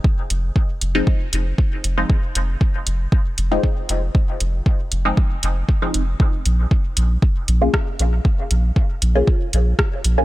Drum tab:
HH |-x-x-x-x|-x-x-x-x|-x-x-x-x|-x-x-x-x|
SD |--------|--------|--------|------r-|
BD |o-o-o-o-|o-o-o-o-|o-o-o-o-|o-o-o-o-|

HH |-x-x-x-x|
SD |------r-|
BD |o-o-o-o-|